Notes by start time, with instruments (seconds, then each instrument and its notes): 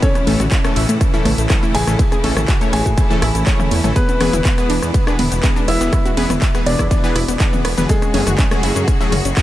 Already playing: string section E3 E4
0.02 string section C#3 A3, grand piano C#4 C#5, synth arpeggio sound A4, kick, closed hi-hat, ride, shaker
0.15 synth arpeggio sound A3, cross-stick, closed hi-hat, high conga, shaker
0.27 detuned saw bass A1, supersaw synth A2 E3 A3 C#4 A4, synth arpeggio sound A3, open hi-hat, ride, high conga
0.40 detuned saw bass A1, synth arpeggio sound F#4, cross-stick, closed hi-hat, mid tom, shaker
0.52 synth arpeggio sound A3, kick, clap, closed hi-hat, ride, shaker
0.64 supersaw synth A2 E3 A3 C#4 A4, synth arpeggio sound A3, cross-stick, closed hi-hat, shaker
0.76 detuned saw bass A1, synth arpeggio sound E4, open hi-hat, ride
0.89 detuned saw bass A2, synth arpeggio sound A3, closed hi-hat, shaker
1.01 synth arpeggio sound A3, kick, cross-stick, closed hi-hat, ride, shaker
1.14 supersaw synth A2 E3 A3 C#4 A4, synth arpeggio sound E4, shaker
1.25 detuned saw bass A1, synth arpeggio sound A3, cross-stick, open hi-hat, mid tom, ride
1.38 detuned saw bass A1, synth arpeggio sound A3, closed hi-hat, shaker
1.50 supersaw synth A2 E3 A3 C#4 A4, synth arpeggio sound A3, kick, cross-stick, clap, closed hi-hat, ride, shaker
1.63 synth arpeggio sound E4, high conga, shaker
1.75 detuned saw bass A1, synth arpeggio sound A3, grand piano G#4 G#5, open hi-hat, ride
1.87 detuned saw bass A1, supersaw synth A2 E3 A3 C#4 A4, synth arpeggio sound A3, cross-stick, closed hi-hat, shaker
1.99 synth arpeggio sound A3, kick, closed hi-hat, ride, shaker
2.12 synth arpeggio sound G#4, cross-stick, closed hi-hat, high conga, shaker
2.24 detuned saw bass A1, supersaw synth A2 E3 A3 C#4 A4, synth arpeggio sound A3, open hi-hat, ride, high conga
2.37 detuned saw bass A1, synth arpeggio sound A3, cross-stick, closed hi-hat, mid tom, shaker
2.48 synth arpeggio sound F#4, kick, clap, closed hi-hat, ride, shaker
2.61 supersaw synth A2 E3 A3 C#4 C#5, synth arpeggio sound A3, closed hi-hat, shaker
2.73 detuned saw bass A1, synth arpeggio sound A3, grand piano G#4 G#5, cross-stick, open hi-hat, ride
2.86 detuned saw bass A2, synth arpeggio sound F#4, kick, closed hi-hat, shaker
2.98 synth arpeggio sound A3, kick, cross-stick, closed hi-hat, ride, shaker
3.10 supersaw synth A2 E3 A3 C#4 A4, synth arpeggio sound A3, shaker
3.22 detuned saw bass A1, synth arpeggio sound E4, cross-stick, open hi-hat, ride
3.35 detuned saw bass A1, synth arpeggio sound A3, closed hi-hat, shaker
3.47 supersaw synth A2 E3 A3 C#4 C#5, synth arpeggio sound C#4, kick, clap, closed hi-hat, ride, shaker
3.60 synth arpeggio sound A3, cross-stick, mid tom, high conga, shaker
3.71 detuned saw bass E2, synth arpeggio sound A3, open hi-hat, ride
3.84 detuned saw bass A1, supersaw synth E3 A3 C#4 A4, synth arpeggio sound A3, cross-stick, closed hi-hat, mid tom, shaker
3.96 string section B2 G#3, grand piano B3 B4, synth arpeggio sound G#4, kick, cross-stick, closed hi-hat, ride, shaker
4.09 synth arpeggio sound B3, closed hi-hat, high conga, shaker
4.20 detuned saw bass E1, supersaw synth E3 B3 G#4 B4, synth arpeggio sound B3, cross-stick, open hi-hat, ride, high conga
4.33 detuned saw bass E1, synth arpeggio sound E4, closed hi-hat, mid tom, shaker
4.45 synth arpeggio sound B3, kick, clap, closed hi-hat, ride, shaker
4.58 supersaw synth E3 B3 G#4 B4, synth arpeggio sound B3, cross-stick, closed hi-hat, shaker
4.70 detuned saw bass E1, synth arpeggio sound D4, open hi-hat, ride
4.82 detuned saw bass E2, synth arpeggio sound B3, cross-stick, closed hi-hat, shaker
4.94 synth arpeggio sound B3, kick, closed hi-hat, ride, shaker
5.07 supersaw synth E3 B3 G#4 B4, synth arpeggio sound D4, cross-stick, shaker
5.19 detuned saw bass E1, synth arpeggio sound B3, open hi-hat, mid tom, ride
5.32 detuned saw bass E1, synth arpeggio sound B3, closed hi-hat, shaker
5.43 supersaw synth E3 B3 G#4 B4, synth arpeggio sound B3, kick, cross-stick, clap, closed hi-hat, ride, shaker
5.56 synth arpeggio sound D4, high conga, shaker
5.68 detuned saw bass E1, synth arpeggio sound B3, grand piano E4 E5, cross-stick, open hi-hat, ride
5.81 detuned saw bass E1, supersaw synth E3 B3 G#4 B4, synth arpeggio sound B3, closed hi-hat, shaker
5.93 synth arpeggio sound B3, kick, cross-stick, closed hi-hat, ride, shaker
6.05 synth arpeggio sound F#4, closed hi-hat, high conga, shaker
6.17 detuned saw bass E1, supersaw synth E3 B3 G#4 B4, synth arpeggio sound B3, open hi-hat, ride, high conga
6.30 detuned saw bass E1, synth arpeggio sound B3, cross-stick, closed hi-hat, mid tom, shaker
6.42 synth arpeggio sound E4, kick, clap, closed hi-hat, ride, shaker
6.55 supersaw synth E3 B3 G#4 B4, synth arpeggio sound B3, cross-stick, closed hi-hat, shaker
6.66 detuned saw bass E1, synth arpeggio sound B3, grand piano D4 D5, open hi-hat, ride
6.79 detuned saw bass E2, synth arpeggio sound E4, kick, cross-stick, closed hi-hat, shaker
6.91 synth arpeggio sound B3, kick, closed hi-hat, ride, shaker
7.04 supersaw synth E3 B3 G#4 B4, synth arpeggio sound B3, shaker
7.16 detuned saw bass E1, synth arpeggio sound E4, cross-stick, open hi-hat, ride
7.28 detuned saw bass E1, synth arpeggio sound B3, closed hi-hat, shaker
7.40 supersaw synth E3 B3 G#4 B4, synth arpeggio sound D4, kick, cross-stick, clap, closed hi-hat, ride, shaker
7.53 synth arpeggio sound B3, mid tom, high conga, shaker
7.65 detuned saw bass E1, synth arpeggio sound B3, cross-stick, open hi-hat, ride
7.78 detuned saw bass E1, supersaw synth E3 B3 G#4 B4, synth arpeggio sound B3, closed hi-hat, mid tom, shaker
7.89 string section C#3 F#4 G#4, grand piano G#3 G#4, synth arpeggio sound A4, kick, closed hi-hat, ride, shaker
8.02 synth arpeggio sound C#4, cross-stick, closed hi-hat, high conga, shaker
8.14 detuned saw bass F#1, supersaw synth F#3 A3 C#4 G#4, synth arpeggio sound C#4, open hi-hat, ride, high conga
8.27 detuned saw bass F#1, synth arpeggio sound F#4, cross-stick, closed hi-hat, mid tom, shaker
8.38 synth arpeggio sound C#4, kick, clap, closed hi-hat, ride, shaker
8.51 supersaw synth F#3 A3 C#4 G#4, synth arpeggio sound C#4, cross-stick, closed hi-hat, shaker
8.63 detuned saw bass F#1, synth arpeggio sound E4, open hi-hat, ride
8.76 detuned saw bass F#2, synth arpeggio sound C#4, closed hi-hat, shaker
8.88 synth arpeggio sound C#4, kick, cross-stick, closed hi-hat, ride, shaker
9.01 supersaw synth F#3 A3 C#4 G#4, synth arpeggio sound E4, shaker
9.12 detuned saw bass F#1, synth arpeggio sound C#4, cross-stick, open hi-hat, mid tom, ride
9.25 detuned saw bass F#1, synth arpeggio sound C#4, closed hi-hat, shaker
9.37 supersaw synth F#3 A3 C#4 G#4, synth arpeggio sound C#4, kick, cross-stick, clap, closed hi-hat, ride, shaker